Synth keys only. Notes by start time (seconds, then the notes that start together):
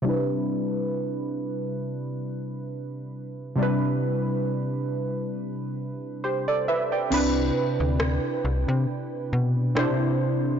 0.02 C3 G3 D4
0.07 E4 B4
3.56 C3 G3 D4
3.61 E4 B4
6.24 G4 C5
6.48 A4 D5
6.68 B4 E5
6.92 D5 G5
7.10 C3 C4 D4 E4 B4
9.75 C3 C4 D4 E4 C5